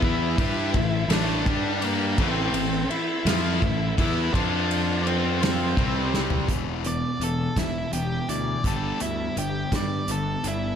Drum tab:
RD |--x-x-x-x-x-|x-x-x-x-x-x-|x-x-x-x-x---|------------|
HH |------------|------------|------------|x-x-x-x-x-x-|
SD |------o-----|------o-----|------o---o-|------o-----|
FT |------------|------------|-----------o|------------|
BD |o-o-o---o---|o-------o-o-|o-------o---|o-----o-----|

RD |------------|
HH |x-x-x-x-x-x-|
SD |------o-----|
FT |------------|
BD |o-----o-----|